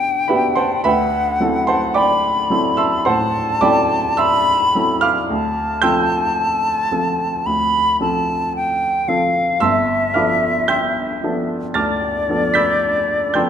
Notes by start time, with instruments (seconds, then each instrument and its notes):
Already playing: grand piano B2 B3 D4 F#4 G4, flute G5
0.28 grand piano B3 D4 F#4 G4 B4 E5 G5 B5
0.55 grand piano C5 F#5 A5 C6
0.84 grand piano D2 B4 E5 G5 B5, flute F#5
1.40 grand piano F#3 C4 E4 A4
1.67 grand piano C5 F#5 A5 C6
1.94 grand piano D5 G5 B5 D6, flute B5
2.50 grand piano F#3 C4 E4 A4
2.77 grand piano E5 A5 C6 E6
3.05 grand piano A2 C5 F#5 A5 C6, flute A5
3.61 grand piano F#3 C4 E4 A4 D5 G5 B5 D6
4.17 grand piano E5 A5 C6 E6, flute B5
4.75 grand piano F#3 C4 E4 A4
5.01 grand piano F5 B5 D6 F6
5.30 grand piano D2, flute A5
5.82 grand piano F3 C4 F4 A4 G5 C6 E6 G6
6.91 grand piano F3 C4 F4 A4
7.46 grand piano D2, flute B5
8.01 grand piano F3 C4 F4 A4, flute A5
8.56 flute G5
9.08 grand piano F3 C4 F4 A4, flute F5
9.60 grand piano G1 E5 A5 C6 E6, flute E5
10.14 grand piano F3 B3 D4 A4 F5 B5 D6 F6
10.68 grand piano G5 C6 E6 G6
11.23 grand piano F3 B3 D4 A4
11.74 grand piano D2 A5 D6 F6 A6, flute D5
12.29 grand piano F3 B3 D4 A4
12.54 grand piano B5 E6 G6 B6
13.34 grand piano F3 B3 D4 A4 G5 C6 E6 G6